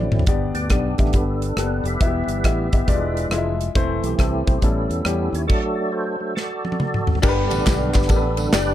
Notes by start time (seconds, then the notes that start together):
Already playing: D3 F#3 C4 E4 D5
0.11 G#1, mid tom
0.19 floor tom
0.26 G1 G2 B3 D4 G4 D5, kick, closed hi-hat
0.54 D2 B3 D4 G4, closed hi-hat
0.70 B1 B3 D4 G4 D5, kick, cross-stick, closed hi-hat
0.98 A1 D3 G3 B3 D4 G4 E5, kick, cross-stick, closed hi-hat
1.06 cross-stick
1.12 G1 B3 D4 G4 A4 B4, kick, closed hi-hat
1.42 closed hi-hat
1.57 F#1 A#3 D4 G4 A4 B4, cross-stick, closed hi-hat
1.62 B3
1.84 F1 G4 B4 E5, closed hi-hat
2.00 E1 E3 G3 B3 E4 F#4 E5, kick, closed hi-hat
2.07 G4
2.28 G1, closed hi-hat
2.44 A1 B3 E4 G4 E5, kick, cross-stick, closed hi-hat
2.73 G1 B3 E4 G4 E5, kick, closed hi-hat
2.86 E1 E3 G3 G#3 D4 E4 F4 D5, kick, closed hi-hat
2.93 G#3
3.17 closed hi-hat
3.30 F1 G#3 E4 F4 D#5, cross-stick, closed hi-hat
3.38 E5
3.61 closed hi-hat
3.75 E1 E3 A3 C4 E4 C5, kick, closed hi-hat
4.03 B1 C4 E4 G4, closed hi-hat
4.18 C2 A3 C4 E4 A4, kick, cross-stick, closed hi-hat
4.46 B1 A3 C4 E4 G4 C5, kick, closed hi-hat
4.61 A1 A2 G3 B3 C#4 E4 A4, kick, closed hi-hat
4.90 E2, closed hi-hat
5.05 E2 G3 C#4 E4 G4, cross-stick, closed hi-hat
5.33 D#2 C#5, closed hi-hat
5.47 F#3 A3 D4 F#4 A4 D5, kick, crash
5.75 D5
5.92 F#4 A4 C5
6.20 F#3 A3 D4
6.35 F#4 A4 D5, snare
6.65 high tom
6.72 high tom
6.80 mid tom
6.94 mid tom
7.07 floor tom
7.15 floor tom
7.22 G1 G2 D3 G3 B3 D4 G4 A#4, kick, crash, tambourine
7.29 B4
7.50 A1 B3 D4 G4, ride, tambourine
7.65 B1 D4 G4 B4, kick, snare, clap, ride, tambourine
7.94 G1 D4 G4 B4, kick, snare, clap, ride, tambourine
8.02 snare
8.08 A1 D4 G4 A4 A#4, kick, ride, tambourine
8.16 B4
8.37 D3 G3 B3, ride, tambourine
8.53 F#1 D4 G4 B4 D5, snare, clap, ride, tambourine